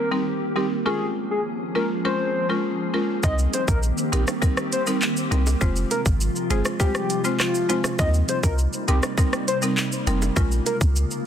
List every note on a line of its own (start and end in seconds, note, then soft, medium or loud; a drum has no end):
0.00 0.84 D#3 medium
0.00 3.20 A#3 medium
0.00 0.84 C4 medium
0.00 0.84 G4 medium
0.11 0.29 G3 medium
0.11 0.29 C4 medium
0.11 0.30 D#4 medium
0.11 0.30 A#4 medium
0.56 0.74 G3 medium
0.56 0.74 C4 medium
0.56 0.74 D#4 medium
0.56 0.66 G4 medium
0.56 0.74 A#4 medium
0.86 3.22 F3 medium
0.86 1.40 G#3 medium
0.86 1.41 C#4 medium
0.86 3.22 C#4 medium
0.86 1.41 F4 medium
0.86 1.06 G#4 loud
0.86 3.22 G#4 medium
0.86 1.41 A#4 loud
1.31 1.41 G#4 medium
1.75 1.93 G#3 medium
1.75 1.93 C#4 medium
1.75 1.93 F4 medium
1.75 1.85 A#4 medium
1.75 1.93 A#4 medium
2.05 2.23 G#3 medium
2.05 2.23 C#4 medium
2.05 2.23 F4 medium
2.05 2.23 A#4 medium
2.05 2.47 C5 loud
2.49 2.67 G#3 medium
2.49 2.67 C#4 medium
2.49 2.67 F4 medium
2.49 2.67 A#4 medium
2.94 3.12 G#3 medium
2.94 3.12 C#4 medium
2.94 3.12 F4 medium
2.94 3.12 A#4 medium
3.23 3.47 C2 loud
3.23 5.59 D#3 medium
3.23 3.78 G3 loud
3.23 5.59 A#3 medium
3.23 3.78 C4 medium
3.23 5.59 C4 medium
3.23 3.78 D#4 medium
3.23 5.59 G4 medium
3.23 3.78 A#4 loud
3.23 3.34 D#5 loud
3.23 kick loud
3.23 shaker medium
3.39 shaker medium
3.54 3.64 C5 medium
3.54 closed hi-hat medium
3.54 high bongo medium
3.54 shaker medium
3.68 3.92 A#1 medium
3.68 3.78 A#4 medium
3.68 kick loud
3.68 shaker medium
3.83 shaker medium
3.98 shaker soft
4.12 4.25 A#1 loud
4.12 4.30 G3 medium
4.12 4.30 C4 medium
4.12 4.31 D#4 medium
4.12 4.23 G4 medium
4.12 4.31 A#4 medium
4.12 closed hi-hat medium
4.12 shaker medium
4.28 cross-stick medium
4.28 high bongo medium
4.28 shaker medium
4.42 4.60 G3 medium
4.42 4.60 C4 medium
4.42 4.60 D#4 medium
4.42 4.60 A#4 loud
4.42 kick medium
4.42 shaker medium
4.57 cross-stick medium
4.57 shaker medium
4.73 4.82 C5 medium
4.73 closed hi-hat medium
4.73 shaker medium
4.87 5.05 G3 medium
4.87 5.05 C4 medium
4.87 5.05 D#4 medium
4.87 5.05 A#4 medium
4.87 shaker medium
5.02 clap medium
5.02 shaker medium
5.17 shaker medium
5.31 5.55 C2 loud
5.31 5.49 G3 medium
5.31 5.49 C4 medium
5.31 5.49 D#4 medium
5.31 5.49 A#4 medium
5.31 closed hi-hat medium
5.31 low bongo medium
5.31 shaker medium
5.47 high bongo medium
5.47 shaker medium
5.61 5.85 F1 loud
5.61 10.32 C3 medium
5.61 7.96 F3 medium
5.61 6.16 G#3 loud
5.61 7.96 G#3 medium
5.61 6.16 C4 medium
5.61 7.96 F4 medium
5.61 6.16 F4 medium
5.61 6.16 C5 loud
5.61 kick loud
5.61 shaker medium
5.76 shaker medium
5.91 6.01 A#4 medium
5.91 closed hi-hat medium
5.91 high bongo medium
5.91 shaker medium
6.06 6.29 G#1 medium
6.06 kick loud
6.06 shaker medium
6.21 shaker medium
6.36 shaker soft
6.50 6.62 G1 loud
6.50 6.68 G#3 medium
6.50 6.68 C4 medium
6.50 6.68 F4 medium
6.50 6.60 G#4 medium
6.50 6.68 C5 medium
6.50 closed hi-hat medium
6.50 shaker medium
6.65 cross-stick medium
6.65 high bongo medium
6.65 shaker medium
6.80 6.98 G#3 medium
6.80 6.98 C4 medium
6.80 6.98 F4 medium
6.80 7.22 G4 loud
6.80 6.98 C5 loud
6.80 kick medium
6.80 shaker medium
6.95 cross-stick medium
6.95 shaker soft
7.10 closed hi-hat medium
7.10 shaker medium
7.24 7.42 G#3 medium
7.24 7.43 C4 medium
7.24 7.43 F4 medium
7.24 7.43 C5 medium
7.24 shaker medium
7.40 7.82 F4 medium
7.40 cross-stick medium
7.40 clap medium
7.40 shaker medium
7.55 shaker medium
7.69 7.87 G#3 medium
7.69 7.87 C4 medium
7.69 7.87 F4 medium
7.69 7.87 C5 medium
7.69 closed hi-hat medium
7.69 low bongo medium
7.69 shaker medium
7.84 cross-stick medium
7.84 high bongo medium
7.84 shaker medium
7.99 8.23 D#2 loud
7.99 8.54 G3 loud
7.99 10.34 G3 medium
7.99 11.26 A#3 medium
7.99 8.54 C4 medium
7.99 10.34 D#4 medium
7.99 8.54 D#4 medium
7.99 8.54 A#4 loud
7.99 8.09 D#5 loud
7.99 kick loud
7.99 shaker medium
8.14 shaker medium
8.29 8.39 C5 medium
8.29 closed hi-hat medium
8.29 high bongo medium
8.29 shaker medium
8.43 8.67 C2 loud
8.43 8.54 A#4 medium
8.43 kick loud
8.43 shaker medium
8.58 shaker medium
8.73 shaker soft
8.88 9.00 C2 loud
8.88 9.06 G3 medium
8.88 9.06 C4 medium
8.88 9.06 D#4 medium
8.88 8.98 G4 medium
8.88 9.06 A#4 medium
8.88 closed hi-hat medium
8.88 shaker medium
9.03 cross-stick medium
9.03 high bongo medium
9.03 shaker medium
9.18 9.36 G3 medium
9.18 9.36 C4 medium
9.18 9.36 D#4 medium
9.18 9.36 A#4 loud
9.18 kick medium
9.18 shaker medium
9.33 cross-stick medium
9.33 shaker soft
9.48 9.58 C5 medium
9.48 closed hi-hat medium
9.48 shaker medium
9.62 9.80 G3 medium
9.62 9.80 C4 medium
9.62 9.80 D#4 medium
9.62 9.80 A#4 medium
9.62 shaker medium
9.77 clap loud
9.77 shaker medium
9.92 shaker medium
10.07 10.30 F1 medium
10.07 10.25 G3 medium
10.07 10.25 C4 medium
10.07 10.25 D#4 medium
10.07 10.25 A#4 medium
10.07 closed hi-hat medium
10.07 low bongo medium
10.07 shaker medium
10.22 high bongo medium
10.22 shaker medium
10.36 10.60 A#1 loud
10.36 11.26 C#3 medium
10.36 10.91 G#3 medium
10.36 11.26 G#3 medium
10.36 10.91 C#4 medium
10.36 10.91 F4 medium
10.36 11.26 F4 medium
10.36 10.91 A#4 loud
10.36 kick loud
10.36 shaker medium
10.52 shaker medium
10.66 10.76 A#4 medium
10.66 closed hi-hat medium
10.66 high bongo medium
10.66 shaker medium
10.81 11.05 C#2 medium
10.81 kick loud
10.81 shaker medium
10.96 shaker medium
11.11 shaker soft